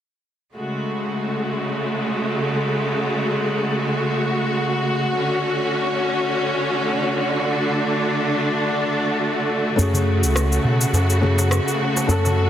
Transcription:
0.55 C#3 G#3 A3 F#4
5.17 D3 A3 C#4
7.48 D4
9.76 F#2 C#3 A3 C#4 F#4 G#4, cabasa
9.94 darbuka dum, cabasa
10.23 C#2, cabasa
10.36 cross-stick, cabasa
10.52 cabasa
10.64 B2
10.81 cabasa
10.93 F#2, darbuka ka, cabasa
11.10 cabasa
11.20 A3 C#4 F#4, darbuka ka, darbuka dum
11.24 G#4
11.39 darbuka tek, cabasa
11.51 cross-stick, cabasa
11.68 cabasa
11.81 darbuka ka
11.97 darbuka tek, cabasa
12.07 F#2 A3 C#4 F#4, darbuka ka, cabasa
12.11 A4
12.25 darbuka ka, darbuka dum, cabasa
12.38 darbuka tek

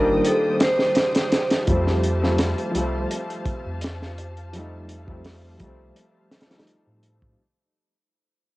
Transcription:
Already playing: G1 D#3 G3 A#3 D4 F4 G4 A#4 C5 G5 D#6, downlifter
0.25 A4, closed hi-hat
0.60 C5, snare, closed hi-hat
0.79 snare
0.95 snare, closed hi-hat
1.15 snare, closed hi-hat
1.32 snare, closed hi-hat
1.51 snare, closed hi-hat
1.67 F2 F3 G3 A3 F5 A5, kick, closed hi-hat
1.72 C4
1.87 snare
2.04 closed hi-hat
2.22 F3 G3 A3, snare
2.27 C4
2.39 snare, closed hi-hat
2.58 closed hi-hat
2.71 C2 F3 G3, closed hi-hat
2.78 A3 C4
3.11 closed hi-hat
3.30 closed hi-hat
3.46 kick, closed hi-hat
3.66 F2
3.81 snare, closed hi-hat
4.02 snare
4.18 closed hi-hat
4.37 closed hi-hat
4.53 F3 G3 A3, closed hi-hat
4.57 D#4
4.89 closed hi-hat
5.07 F3 G3 A3, kick
5.12 C4
5.24 snare, open hi-hat
5.57 C2 F3 G3, kick, closed hi-hat
5.63 A3 C4
5.96 closed hi-hat
6.31 snare, closed hi-hat
6.40 snare, closed hi-hat
6.47 F3 G3
6.51 A3, snare, closed hi-hat
6.56 D#4, snare, closed hi-hat
6.67 closed hi-hat
6.87 A2
7.03 closed hi-hat
7.22 kick

